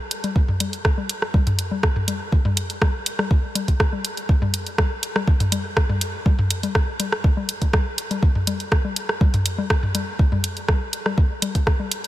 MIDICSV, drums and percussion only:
0, 0, Header, 1, 2, 480
1, 0, Start_track
1, 0, Tempo, 491803
1, 348, Time_signature, 4, 2, 24, 8
1, 11782, End_track
2, 0, Start_track
2, 0, Title_t, "Drums"
2, 109, Note_on_c, 9, 42, 94
2, 206, Note_off_c, 9, 42, 0
2, 233, Note_on_c, 9, 42, 33
2, 233, Note_on_c, 9, 63, 45
2, 331, Note_off_c, 9, 42, 0
2, 331, Note_off_c, 9, 63, 0
2, 348, Note_on_c, 9, 36, 110
2, 446, Note_off_c, 9, 36, 0
2, 473, Note_on_c, 9, 45, 82
2, 570, Note_off_c, 9, 45, 0
2, 588, Note_on_c, 9, 42, 98
2, 588, Note_on_c, 9, 63, 42
2, 686, Note_off_c, 9, 42, 0
2, 686, Note_off_c, 9, 63, 0
2, 713, Note_on_c, 9, 42, 30
2, 811, Note_off_c, 9, 42, 0
2, 828, Note_on_c, 9, 36, 118
2, 828, Note_on_c, 9, 37, 87
2, 926, Note_off_c, 9, 36, 0
2, 926, Note_off_c, 9, 37, 0
2, 953, Note_on_c, 9, 63, 44
2, 1051, Note_off_c, 9, 63, 0
2, 1068, Note_on_c, 9, 42, 87
2, 1166, Note_off_c, 9, 42, 0
2, 1193, Note_on_c, 9, 37, 58
2, 1291, Note_off_c, 9, 37, 0
2, 1308, Note_on_c, 9, 36, 117
2, 1308, Note_on_c, 9, 63, 43
2, 1406, Note_off_c, 9, 36, 0
2, 1406, Note_off_c, 9, 63, 0
2, 1433, Note_on_c, 9, 42, 33
2, 1433, Note_on_c, 9, 45, 95
2, 1530, Note_off_c, 9, 45, 0
2, 1531, Note_off_c, 9, 42, 0
2, 1548, Note_on_c, 9, 42, 93
2, 1646, Note_off_c, 9, 42, 0
2, 1672, Note_on_c, 9, 63, 42
2, 1770, Note_off_c, 9, 63, 0
2, 1788, Note_on_c, 9, 36, 115
2, 1789, Note_on_c, 9, 37, 95
2, 1886, Note_off_c, 9, 36, 0
2, 1887, Note_off_c, 9, 37, 0
2, 1913, Note_on_c, 9, 45, 88
2, 2010, Note_off_c, 9, 45, 0
2, 2027, Note_on_c, 9, 63, 46
2, 2029, Note_on_c, 9, 42, 90
2, 2125, Note_off_c, 9, 63, 0
2, 2127, Note_off_c, 9, 42, 0
2, 2268, Note_on_c, 9, 36, 113
2, 2366, Note_off_c, 9, 36, 0
2, 2392, Note_on_c, 9, 45, 87
2, 2392, Note_on_c, 9, 63, 44
2, 2490, Note_off_c, 9, 45, 0
2, 2490, Note_off_c, 9, 63, 0
2, 2509, Note_on_c, 9, 42, 96
2, 2606, Note_off_c, 9, 42, 0
2, 2634, Note_on_c, 9, 42, 31
2, 2732, Note_off_c, 9, 42, 0
2, 2748, Note_on_c, 9, 36, 121
2, 2748, Note_on_c, 9, 63, 43
2, 2749, Note_on_c, 9, 37, 93
2, 2845, Note_off_c, 9, 63, 0
2, 2846, Note_off_c, 9, 36, 0
2, 2846, Note_off_c, 9, 37, 0
2, 2989, Note_on_c, 9, 42, 89
2, 3086, Note_off_c, 9, 42, 0
2, 3112, Note_on_c, 9, 63, 46
2, 3114, Note_on_c, 9, 37, 59
2, 3210, Note_off_c, 9, 63, 0
2, 3211, Note_off_c, 9, 37, 0
2, 3228, Note_on_c, 9, 36, 121
2, 3326, Note_off_c, 9, 36, 0
2, 3467, Note_on_c, 9, 63, 45
2, 3469, Note_on_c, 9, 42, 94
2, 3565, Note_off_c, 9, 63, 0
2, 3567, Note_off_c, 9, 42, 0
2, 3593, Note_on_c, 9, 36, 59
2, 3594, Note_on_c, 9, 42, 33
2, 3690, Note_off_c, 9, 36, 0
2, 3691, Note_off_c, 9, 42, 0
2, 3708, Note_on_c, 9, 36, 110
2, 3709, Note_on_c, 9, 37, 94
2, 3806, Note_off_c, 9, 36, 0
2, 3806, Note_off_c, 9, 37, 0
2, 3832, Note_on_c, 9, 63, 44
2, 3929, Note_off_c, 9, 63, 0
2, 3949, Note_on_c, 9, 42, 92
2, 4046, Note_off_c, 9, 42, 0
2, 4074, Note_on_c, 9, 42, 34
2, 4171, Note_off_c, 9, 42, 0
2, 4188, Note_on_c, 9, 36, 118
2, 4286, Note_off_c, 9, 36, 0
2, 4313, Note_on_c, 9, 45, 86
2, 4313, Note_on_c, 9, 63, 46
2, 4411, Note_off_c, 9, 45, 0
2, 4411, Note_off_c, 9, 63, 0
2, 4429, Note_on_c, 9, 42, 98
2, 4526, Note_off_c, 9, 42, 0
2, 4553, Note_on_c, 9, 42, 31
2, 4651, Note_off_c, 9, 42, 0
2, 4667, Note_on_c, 9, 63, 44
2, 4668, Note_on_c, 9, 36, 121
2, 4668, Note_on_c, 9, 37, 96
2, 4765, Note_off_c, 9, 63, 0
2, 4766, Note_off_c, 9, 36, 0
2, 4766, Note_off_c, 9, 37, 0
2, 4909, Note_on_c, 9, 42, 91
2, 5006, Note_off_c, 9, 42, 0
2, 5033, Note_on_c, 9, 63, 45
2, 5034, Note_on_c, 9, 37, 65
2, 5130, Note_off_c, 9, 63, 0
2, 5132, Note_off_c, 9, 37, 0
2, 5148, Note_on_c, 9, 36, 127
2, 5246, Note_off_c, 9, 36, 0
2, 5272, Note_on_c, 9, 45, 95
2, 5274, Note_on_c, 9, 42, 34
2, 5369, Note_off_c, 9, 45, 0
2, 5371, Note_off_c, 9, 42, 0
2, 5387, Note_on_c, 9, 63, 47
2, 5388, Note_on_c, 9, 42, 95
2, 5485, Note_off_c, 9, 63, 0
2, 5486, Note_off_c, 9, 42, 0
2, 5628, Note_on_c, 9, 36, 117
2, 5628, Note_on_c, 9, 37, 98
2, 5726, Note_off_c, 9, 36, 0
2, 5726, Note_off_c, 9, 37, 0
2, 5752, Note_on_c, 9, 45, 92
2, 5752, Note_on_c, 9, 63, 45
2, 5850, Note_off_c, 9, 45, 0
2, 5850, Note_off_c, 9, 63, 0
2, 5869, Note_on_c, 9, 42, 97
2, 5966, Note_off_c, 9, 42, 0
2, 6108, Note_on_c, 9, 36, 119
2, 6108, Note_on_c, 9, 63, 47
2, 6206, Note_off_c, 9, 36, 0
2, 6206, Note_off_c, 9, 63, 0
2, 6233, Note_on_c, 9, 45, 93
2, 6331, Note_off_c, 9, 45, 0
2, 6349, Note_on_c, 9, 42, 102
2, 6446, Note_off_c, 9, 42, 0
2, 6474, Note_on_c, 9, 42, 31
2, 6474, Note_on_c, 9, 63, 46
2, 6571, Note_off_c, 9, 42, 0
2, 6571, Note_off_c, 9, 63, 0
2, 6588, Note_on_c, 9, 36, 127
2, 6588, Note_on_c, 9, 37, 95
2, 6686, Note_off_c, 9, 36, 0
2, 6686, Note_off_c, 9, 37, 0
2, 6828, Note_on_c, 9, 42, 97
2, 6828, Note_on_c, 9, 63, 48
2, 6926, Note_off_c, 9, 42, 0
2, 6926, Note_off_c, 9, 63, 0
2, 6953, Note_on_c, 9, 37, 65
2, 7051, Note_off_c, 9, 37, 0
2, 7068, Note_on_c, 9, 36, 127
2, 7166, Note_off_c, 9, 36, 0
2, 7193, Note_on_c, 9, 63, 48
2, 7291, Note_off_c, 9, 63, 0
2, 7308, Note_on_c, 9, 42, 102
2, 7406, Note_off_c, 9, 42, 0
2, 7433, Note_on_c, 9, 36, 64
2, 7433, Note_on_c, 9, 42, 32
2, 7531, Note_off_c, 9, 36, 0
2, 7531, Note_off_c, 9, 42, 0
2, 7548, Note_on_c, 9, 36, 123
2, 7548, Note_on_c, 9, 63, 48
2, 7549, Note_on_c, 9, 37, 97
2, 7646, Note_off_c, 9, 36, 0
2, 7646, Note_off_c, 9, 63, 0
2, 7647, Note_off_c, 9, 37, 0
2, 7789, Note_on_c, 9, 42, 99
2, 7887, Note_off_c, 9, 42, 0
2, 7914, Note_on_c, 9, 63, 48
2, 7915, Note_on_c, 9, 42, 34
2, 8011, Note_off_c, 9, 63, 0
2, 8012, Note_off_c, 9, 42, 0
2, 8028, Note_on_c, 9, 36, 126
2, 8126, Note_off_c, 9, 36, 0
2, 8153, Note_on_c, 9, 45, 84
2, 8251, Note_off_c, 9, 45, 0
2, 8269, Note_on_c, 9, 42, 108
2, 8269, Note_on_c, 9, 63, 48
2, 8366, Note_off_c, 9, 63, 0
2, 8367, Note_off_c, 9, 42, 0
2, 8395, Note_on_c, 9, 42, 29
2, 8492, Note_off_c, 9, 42, 0
2, 8508, Note_on_c, 9, 36, 127
2, 8509, Note_on_c, 9, 37, 95
2, 8606, Note_off_c, 9, 36, 0
2, 8607, Note_off_c, 9, 37, 0
2, 8634, Note_on_c, 9, 63, 47
2, 8731, Note_off_c, 9, 63, 0
2, 8749, Note_on_c, 9, 42, 102
2, 8846, Note_off_c, 9, 42, 0
2, 8874, Note_on_c, 9, 37, 61
2, 8972, Note_off_c, 9, 37, 0
2, 8988, Note_on_c, 9, 36, 127
2, 8988, Note_on_c, 9, 63, 47
2, 9086, Note_off_c, 9, 36, 0
2, 9086, Note_off_c, 9, 63, 0
2, 9113, Note_on_c, 9, 45, 100
2, 9114, Note_on_c, 9, 42, 31
2, 9211, Note_off_c, 9, 45, 0
2, 9212, Note_off_c, 9, 42, 0
2, 9229, Note_on_c, 9, 42, 99
2, 9326, Note_off_c, 9, 42, 0
2, 9353, Note_on_c, 9, 63, 49
2, 9451, Note_off_c, 9, 63, 0
2, 9468, Note_on_c, 9, 36, 120
2, 9469, Note_on_c, 9, 37, 98
2, 9566, Note_off_c, 9, 36, 0
2, 9566, Note_off_c, 9, 37, 0
2, 9593, Note_on_c, 9, 45, 88
2, 9690, Note_off_c, 9, 45, 0
2, 9708, Note_on_c, 9, 42, 102
2, 9708, Note_on_c, 9, 63, 51
2, 9805, Note_off_c, 9, 63, 0
2, 9806, Note_off_c, 9, 42, 0
2, 9948, Note_on_c, 9, 36, 127
2, 10046, Note_off_c, 9, 36, 0
2, 10073, Note_on_c, 9, 45, 84
2, 10073, Note_on_c, 9, 63, 47
2, 10171, Note_off_c, 9, 45, 0
2, 10171, Note_off_c, 9, 63, 0
2, 10188, Note_on_c, 9, 42, 102
2, 10286, Note_off_c, 9, 42, 0
2, 10314, Note_on_c, 9, 42, 27
2, 10411, Note_off_c, 9, 42, 0
2, 10428, Note_on_c, 9, 36, 122
2, 10428, Note_on_c, 9, 37, 95
2, 10429, Note_on_c, 9, 63, 44
2, 10526, Note_off_c, 9, 36, 0
2, 10526, Note_off_c, 9, 37, 0
2, 10526, Note_off_c, 9, 63, 0
2, 10668, Note_on_c, 9, 42, 92
2, 10766, Note_off_c, 9, 42, 0
2, 10793, Note_on_c, 9, 37, 59
2, 10793, Note_on_c, 9, 63, 47
2, 10891, Note_off_c, 9, 37, 0
2, 10891, Note_off_c, 9, 63, 0
2, 10908, Note_on_c, 9, 36, 126
2, 11006, Note_off_c, 9, 36, 0
2, 11148, Note_on_c, 9, 42, 100
2, 11148, Note_on_c, 9, 63, 49
2, 11245, Note_off_c, 9, 63, 0
2, 11246, Note_off_c, 9, 42, 0
2, 11273, Note_on_c, 9, 36, 66
2, 11273, Note_on_c, 9, 42, 30
2, 11371, Note_off_c, 9, 36, 0
2, 11371, Note_off_c, 9, 42, 0
2, 11388, Note_on_c, 9, 36, 127
2, 11389, Note_on_c, 9, 37, 93
2, 11486, Note_off_c, 9, 36, 0
2, 11486, Note_off_c, 9, 37, 0
2, 11513, Note_on_c, 9, 63, 48
2, 11610, Note_off_c, 9, 63, 0
2, 11629, Note_on_c, 9, 42, 101
2, 11727, Note_off_c, 9, 42, 0
2, 11782, End_track
0, 0, End_of_file